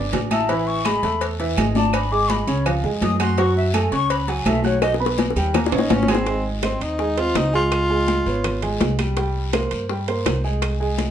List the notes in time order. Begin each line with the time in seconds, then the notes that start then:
Already playing: G1 D4 D5 D6
0.13 A1, cowbell, high conga, low timbale, low agogo, short guiro
0.31 E4 E5 A5 E6, cowbell, high conga, low agogo, short guiro, claves
0.49 E3 E4 E5 B5, cowbell, high conga, low agogo, long guiro
0.67 C#6, high conga
0.85 G#3 G#4 G#5 B5, cowbell, high conga, low timbale, low agogo, short guiro, claves
1.03 E2 A3 A4 A5, cowbell, high conga, short guiro
1.21 cowbell, high conga, low agogo, long guiro
1.40 E3 E4 E5, cowbell, high conga
1.57 G#1 G#3 G#4 G#5, cowbell, high conga, low timbale, low agogo, short guiro, claves
1.75 D4 D5 A5 D6, high conga, short guiro
1.93 B5, cowbell, high conga, low agogo, long guiro, claves
2.11 G#3 G#4 G#5 D6, high conga
2.30 B5, cowbell, high conga, low timbale, low agogo, short guiro
2.47 C#2 C#3 C#4 C#5, low agogo, short guiro
2.66 F3 F4 F5, cowbell, high conga, low conga, low agogo, long guiro, claves
2.83 F2 G#3 G#4 G#5, high conga, low conga
3.02 F#2 D#6, cowbell, high conga, low timbale, low agogo, short guiro
3.20 F#4 F#5 C6 F#6, cowbell, high conga, low agogo, short guiro, claves
3.38 F#3 F#4 F#5 C#6, cowbell, high conga, low agogo, long guiro
3.56 E5, high conga
3.74 A3 A4 G#5 A5, cowbell, high conga, low timbale, low agogo, short guiro, claves
3.92 C#2 C#4 C#5 C#6, cowbell, high conga, short guiro
4.10 B5, cowbell, high conga, low agogo, long guiro
4.28 F#3 F#4 F#5 G#5, cowbell, high conga
4.46 B1 A3 A4 E5 A5, cowbell, high conga, low timbale, low agogo, short guiro, claves
4.64 F#4 C#5 F#5 F#6, high conga, short guiro
4.82 D#5, cowbell, high bongo, high conga, low agogo, long guiro, claves
4.94 high bongo
5.00 B3 B4 B5, high conga
5.06 high bongo
5.18 cowbell, low bongo, high conga, low timbale, low agogo, short guiro
5.30 high bongo
5.36 D#2 G3 G4 G5, low agogo, short guiro
5.54 A#3 A#4 A#5, cowbell, low bongo, high conga, low conga, low agogo, long guiro, claves
5.66 D4, low bongo
5.72 A#1 C#4 D#4 C#5 C#6, high conga, high timbale
5.78 low bongo
5.90 G#1 C#4, cowbell, low bongo, high conga, high timbale, low agogo, short guiro
6.03 low bongo
6.08 C4 G#4 G#5 G#6, cowbell, high conga, low timbale, low agogo, short guiro, claves
6.15 low bongo
6.26 G#3 G#4 G#5, high bongo, high conga, high timbale, long guiro
6.45 high conga
6.63 C4 C5 D#5, high bongo, high conga, high timbale, low timbale, short guiro, claves
6.81 D#2 D#4, high conga, high timbale, short guiro
6.99 G#3 G#4 G#5, high bongo, high conga, long guiro
7.17 C4 F4 C5 D#5, high conga, high timbale
7.35 C#2 D#4, high bongo, low bongo, high timbale, low timbale, short guiro, claves
7.53 G#3 F4 G#4 G#5, high conga, short guiro
7.72 high bongo, high conga, high timbale, long guiro, claves
7.90 G#3 G#4 G#5, high conga
8.08 high bongo, high conga, high timbale, low timbale, short guiro
8.26 G#1 B3 B4 C#5, high bongo, high conga, short guiro
8.44 high bongo, high conga, low conga, high timbale, long guiro, claves
8.62 G#3 G#4 G#5, high bongo, high conga, low conga, high timbale
8.81 C2, high bongo, low bongo, high conga, high timbale, low timbale, short guiro
8.99 G3 G4 G5, high bongo, high conga, high timbale, short guiro, claves
9.17 G3 G4 G5, high bongo, high conga, high timbale, long guiro
9.36 high conga
9.53 A#3 A#4 C5, high bongo, high conga, high timbale, low timbale, short guiro, claves
9.71 G2, high conga, high timbale, short guiro
9.89 G3 G4 G5, high bongo, high conga, long guiro
10.08 A#3 A#4 C5, high conga, high timbale
10.26 C2, high bongo, low bongo, high timbale, low timbale, short guiro, claves
10.44 G#3 G#4 G#5, high conga, short guiro
10.62 high bongo, high conga, high timbale, long guiro, claves
10.80 G#3 G#4 G#5, high conga
10.98 high bongo, high conga, high timbale, low timbale, short guiro